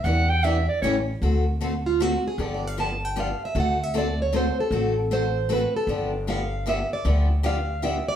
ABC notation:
X:1
M:3/4
L:1/8
Q:"Swing" 1/4=154
K:G
V:1 name="Soprano saxophone"
f g e d ^c z | z6 | z6 | z6 |
z6 | z6 | z6 |]
V:2 name="Steel-string acoustic guitar"
z6 | z3 =F ^F ^G | (3A d =f a g f e | f e d ^c =c A- |
A z c2 B A | z2 =f2 e d | z2 =f2 e d |]
V:3 name="Steel-string acoustic guitar"
[E,G,DEB] z [E,G,DEB] z [E,G,^CEA] z | z6 | z6 | z6 |
z6 | z6 | z6 |]
V:4 name="Steel-string acoustic guitar"
[E,B,DG] z [E,B,DG] z [^C,E,A,^CG] z | [D,A,CFA] z [D,A,CFA] z [D,A,CFA] z | [D,=F,B,DG] z [D,F,B,DG] z [D,F,B,DG] z | [D,A,CFA] z [D,A,CFA] z [D,A,CFA] z |
[D,A,CFA] z [D,A,CFA] z [D,A,CFA] z | [D,=F,B,DG] z [D,F,B,DG] z [D,F,B,DG] z | [D,=F,B,DG] z [D,F,B,DG] z [D,F,B,DG] z |]
V:5 name="Upright bass" clef=bass
E,,4 A,,,2 | D,,6 | G,,,6 | D,,6 |
A,,,6 | G,,,6 | D,,6 |]